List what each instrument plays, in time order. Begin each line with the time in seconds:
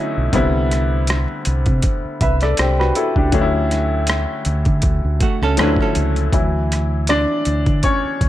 Already playing: grand piano D3 F#3 A3 C#4 D#4 E4, hollow-body jazz guitar E4
0.17 fingered electric bass B1
0.33 fingered electric bass C2, grand piano D3 G3 B3 C4 E4, kick, closed hi-hat
0.71 cross-stick, closed hi-hat
1.07 cross-stick, closed hi-hat
1.45 fingered electric bass C2, closed hi-hat
1.66 fingered electric bass C3, kick, closed hi-hat
1.82 kick, closed hi-hat
2.05 muted fingered electric bass stroke
2.21 fingered electric bass C2, grand piano B4 E5, kick, closed hi-hat
2.41 grand piano A4 D5, cross-stick, closed hi-hat
2.57 fingered electric bass C2, grand piano G4 C5, cross-stick, closed hi-hat
2.79 grand piano F#4 B4, cross-stick
2.95 grand piano E4 A4, closed hi-hat
3.16 fingered electric bass C#2, grand piano D4 G4, kick
3.32 fingered electric bass D2, grand piano D3 F#3 A3 C#4 D4, kick, closed hi-hat
3.41 grand piano E4
3.71 cross-stick, closed hi-hat
4.07 cross-stick, closed hi-hat
4.45 fingered electric bass D2, closed hi-hat
4.65 fingered electric bass D3, kick, closed hi-hat
4.82 fingered electric bass D2, kick, closed hi-hat
5.04 fingered electric bass D2
5.20 hollow-body jazz guitar A3 F#4, kick, closed hi-hat
5.42 fingered electric bass C#2, hollow-body jazz guitar C#4 A4, cross-stick
5.57 fingered electric bass D2, grand piano D3 F3 A3 C#4 E4, hollow-body jazz guitar B4, cross-stick, closed hi-hat
5.61 grand piano F#3, hollow-body jazz guitar D4
5.76 kick
5.81 hollow-body jazz guitar C#4 A4, cross-stick
5.95 fingered electric bass C#2, closed hi-hat
6.16 closed hi-hat
6.33 fingered electric bass D2, grand piano E3 F#3 E4, kick, closed hi-hat
6.72 cross-stick, closed hi-hat
7.07 grand piano D4 D5, cross-stick, closed hi-hat
7.45 fingered electric bass D2, closed hi-hat
7.66 fingered electric bass D3, kick, closed hi-hat
7.83 grand piano C#4 C#5, kick, closed hi-hat
8.05 muted fingered electric bass stroke
8.21 fingered electric bass D2, kick, closed hi-hat